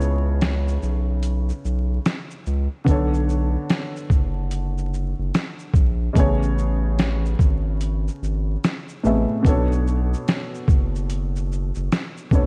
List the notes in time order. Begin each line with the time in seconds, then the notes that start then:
Already playing: C#2 C#3 B3 E4 G#4 C#5 A5
0.01 shaker
0.41 snare, closed hi-hat, shaker
0.68 shaker
0.82 B1, shaker
1.23 closed hi-hat, shaker
1.49 shaker
1.65 B1, shaker
2.06 snare, closed hi-hat, shaker
2.30 shaker
2.46 C#2, shaker
2.84 B1 D3 B3 D4, kick, closed hi-hat, shaker
2.89 A4 C#5
3.14 shaker
3.29 shaker
3.70 snare, closed hi-hat, shaker
3.96 shaker
4.10 F#1, kick, shaker
4.51 closed hi-hat, shaker
4.78 shaker
4.94 shaker
5.19 F#1
5.35 snare, closed hi-hat, shaker
5.59 shaker
5.74 A#1, kick, shaker
6.13 A1 C#3 A3 B3, kick, closed hi-hat, shaker
6.18 G#4 C#5
6.43 shaker
6.58 shaker
6.99 snare, closed hi-hat, shaker
7.25 shaker
7.39 G#1, kick, shaker
7.81 closed hi-hat, shaker
8.08 shaker
8.22 G#1, shaker
8.64 snare, closed hi-hat, shaker
8.89 shaker
9.03 A1 A2 A3 B3 G#4 E5, shaker
9.42 B1 B2 B3 D4, kick, closed hi-hat, shaker
9.47 A4 C#5
9.72 shaker
9.87 shaker
10.14 shaker
10.28 snare, closed hi-hat, shaker
10.54 shaker
10.68 F#1, kick, shaker
10.95 shaker
11.10 closed hi-hat, shaker
11.36 shaker
11.52 shaker
11.75 F#1, shaker
11.92 snare, closed hi-hat, shaker
12.17 shaker
12.31 D2 B2 B3 D4 A4 C#5, kick, shaker